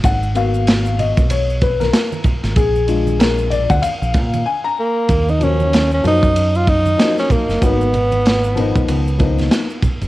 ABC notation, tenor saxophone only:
X:1
M:4/4
L:1/16
Q:"Swing 16ths" 1/4=95
K:Ebm
V:1 name="Tenor saxophone"
z16 | z12 z2 B,2- | B, E D3 D E3 F E3 D B,2 | C8 z8 |]